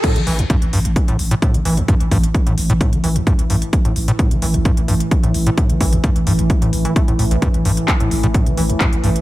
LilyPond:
<<
  \new Staff \with { instrumentName = "Synth drone" } { \clef bass \time 4/4 \key c \major \tempo 4 = 130 <a, e>1~ | <a, e>1~ | <a, e>1~ | <a, e>1~ |
<a, e>1 | }
  \new Staff \with { instrumentName = "Acid bass" } { \clef bass \time 4/4 \key c \major a,16 e16 e16 a,,16 g,16 r16 g,16 r8 a,16 r16 a,16 a,16 e16 e16 a,,16 | g,16 r16 g,16 r8 a,16 r16 a,16 a,16 e16 e16 a,,16 g,16 r16 g,16 r16 | r16 a,16 r16 a,16 a,16 e16 e16 a,,16 g,16 r16 g,16 r8 a,16 r16 a,16 | a,16 e16 e16 a,,16 g,16 r16 g,16 r8 a,16 r16 e16 a16 a,16 a,16 a,,16 |
g,16 r16 g,16 r8 a,16 r16 a,16 a,16 e16 e16 a,,16 g,16 r16 g,16 r16 | }
  \new Staff \with { instrumentName = "808-style bass" } { \clef bass \time 4/4 \key c \major r16 a,,16 a,,16 r8 a,,16 a,,16 a,,16 r16 a,,16 a,,16 r8 a,,16 a,,16 r16 | r16 a,,16 a,,16 r8 a,,16 a,,16 a,,16 r16 a,,16 a,,16 r8 a,,16 a,,16 r16 | r16 a,,16 a,,16 r8 a,,16 a,,16 a,,16 r16 a,,16 a,,16 r8 a,,16 a,,16 r16 | r16 a,,16 a,,16 r8 a,,16 a,,16 a,,16 r16 a,,16 a,,16 r8 a,,16 a,,16 r16 |
r16 a,,16 a,,16 r8 a,,16 a,,16 a,,16 r16 a,,16 a,,16 r8 a,,16 a,,16 r16 | }
  \new DrumStaff \with { instrumentName = "Drums" } \drummode { \time 4/4 <cymc hh bd>16 hh16 hho16 hh16 <hh bd>16 hh16 hho16 hh16 <hh bd>16 hh16 hho16 hh16 <hh bd>16 hh16 hho16 hh16 | <hh bd>16 hh16 <hho bd>16 hh16 <hh bd>16 hh16 hho16 hh16 <hh bd>16 hh16 hho16 hh16 <hh bd>16 hh16 hho16 hh16 | <hh bd>16 hh16 hho16 hh16 <hh bd>16 hh16 hho16 hh16 <hh bd>16 hh16 hho16 hh16 <hh bd>16 hh16 hho16 hh16 | <hh bd>16 hh16 <hho bd>16 hh16 <hh bd>16 hh16 hho16 hh16 <hh bd>16 hh16 hho16 hh16 <hh bd>16 hh16 hho16 hh16 |
<hh bd>16 hh16 hho16 hh16 <hc hh bd>16 hh16 hho16 hh16 <hh bd>16 hh16 hho16 hh16 <hc hh bd>16 hh16 hho16 hh16 | }
>>